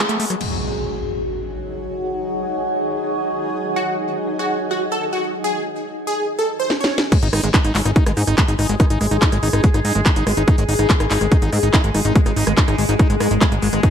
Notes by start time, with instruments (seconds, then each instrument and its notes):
Already playing: synth drone F#3 G#3
0.09 acid bass A3, closed hi-hat
0.20 acid bass A3, open hi-hat
0.30 acid bass F#3, cross-stick, closed hi-hat
0.41 synth drone F#3 F#4, ambient pad D#4, crash, impact
0.54 ambient pad G#4
0.58 ambient pad G#5
0.80 ambient pad D#5
3.76 supersaw synth F#4
4.39 supersaw synth F#4
4.71 supersaw synth F#4
4.92 supersaw synth A4
5.13 supersaw synth F#4
5.44 supersaw synth G#4
6.07 supersaw synth G#4
6.39 supersaw synth A4
6.60 supersaw synth C5
6.70 snare
6.81 supersaw synth C#5, snare
6.98 snare
7.12 synth drone G#3 G#4, acid bass G#3, kick, cross-stick, closed hi-hat, crash
7.22 analog synth bass G#1, acid bass D#4, closed hi-hat
7.33 analog synth bass G#1, acid bass D#4, cross-stick, open hi-hat
7.43 analog synth bass G#1, acid bass G#3, closed hi-hat
7.54 acid bass D#4, kick, cross-stick, clap, closed hi-hat
7.64 analog synth bass G#1, acid bass D#4, closed hi-hat
7.75 analog synth bass G#1, acid bass G#3, clap, open hi-hat
7.85 analog synth bass G#1, acid bass D#4, cross-stick, closed hi-hat
7.96 acid bass D#4, kick, closed hi-hat
8.06 analog synth bass G#1, acid bass G#3, cross-stick, closed hi-hat
8.17 analog synth bass G#2, acid bass D#4, open hi-hat
8.27 analog synth bass G#1, acid bass D#4, cross-stick, closed hi-hat
8.38 acid bass G#3, kick, clap, closed hi-hat
8.48 analog synth bass G#1, acid bass D#4, closed hi-hat
8.59 analog synth bass G#1, acid bass D#4, cross-stick, open hi-hat
8.69 analog synth bass G#1, acid bass G#3, closed hi-hat
8.80 acid bass D#4, kick, cross-stick, closed hi-hat
8.90 analog synth bass G#1, acid bass D#4, closed hi-hat
9.01 analog synth bass G#1, acid bass G#3, cross-stick, open hi-hat
9.11 analog synth bass G#1, acid bass D#4, closed hi-hat
9.22 acid bass D#4, kick, clap, closed hi-hat
9.32 analog synth bass G#1, acid bass G#3, cross-stick, closed hi-hat
9.43 analog synth bass G#1, acid bass D#4, open hi-hat
9.53 analog synth bass G#1, acid bass D#4, cross-stick, closed hi-hat
9.64 acid bass G#3, kick, closed hi-hat
9.74 analog synth bass G#1, acid bass D#4, cross-stick, closed hi-hat
9.85 analog synth bass G#2, acid bass D#4, open hi-hat
9.95 analog synth bass G#1, acid bass G#3, closed hi-hat
10.06 acid bass D#4, kick, cross-stick, clap, closed hi-hat
10.16 analog synth bass G#1, acid bass D#4, closed hi-hat
10.27 analog synth bass G#1, acid bass G#3, cross-stick, open hi-hat
10.37 analog synth bass G#1, acid bass D#4, closed hi-hat
10.48 acid bass D#4, kick, cross-stick, closed hi-hat
10.58 analog synth bass G#1, acid bass G#3, closed hi-hat
10.69 analog synth bass G#1, acid bass D#4, open hi-hat
10.79 analog synth bass G#1, acid bass D#4, cross-stick, closed hi-hat
10.90 acid bass G#3, kick, clap, closed hi-hat
11.00 analog synth bass G#1, acid bass D#4, cross-stick, closed hi-hat
11.11 analog synth bass G#1, acid bass D#4, clap, open hi-hat
11.21 analog synth bass G#1, acid bass G#3, cross-stick, closed hi-hat
11.32 acid bass D#4, kick, closed hi-hat
11.42 analog synth bass G#1, acid bass D#4, closed hi-hat
11.53 analog synth bass G#2, acid bass G#3, cross-stick, open hi-hat
11.63 analog synth bass G#1, acid bass D#4, closed hi-hat
11.74 acid bass D#4, kick, cross-stick, clap, closed hi-hat
11.84 analog synth bass G#1, acid bass G#3, closed hi-hat
11.94 analog synth bass G#1, acid bass D#4, cross-stick, open hi-hat
12.05 analog synth bass G#1, acid bass D#4, closed hi-hat
12.15 acid bass G#3, kick, closed hi-hat
12.26 analog synth bass G#1, acid bass D#4, cross-stick, closed hi-hat
12.36 analog synth bass G#1, acid bass D#4, open hi-hat
12.47 analog synth bass G#1, acid bass G#3, cross-stick, closed hi-hat
12.57 acid bass D#4, kick, clap, closed hi-hat
12.68 analog synth bass G#1, acid bass D#4, cross-stick, closed hi-hat
12.78 analog synth bass G#1, acid bass G#3, open hi-hat
12.89 analog synth bass G#1, acid bass D#4, closed hi-hat
12.99 acid bass D#4, kick, cross-stick, closed hi-hat
13.10 analog synth bass G#1, acid bass G#3, closed hi-hat
13.20 analog synth bass G#2, acid bass G#3, cross-stick, open hi-hat
13.31 analog synth bass G#1, acid bass G#3, closed hi-hat
13.41 acid bass G#3, kick, cross-stick, clap, closed hi-hat
13.52 analog synth bass G#1, acid bass G#3, closed hi-hat
13.62 analog synth bass G#1, acid bass G#3, open hi-hat
13.73 analog synth bass G#1, acid bass G#3, cross-stick, closed hi-hat
13.83 acid bass D#4, synth drone D#4, kick, cross-stick, closed hi-hat